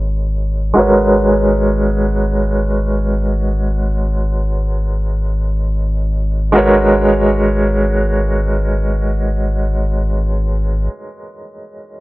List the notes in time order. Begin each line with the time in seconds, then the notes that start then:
Already playing: G#1 G#3 F#4 A#4 B4 C#5
0.74 G#1 G#3 F#4 A#4
0.78 B4 C#5
6.52 G#3 F#4 A#4
6.56 B4 C#5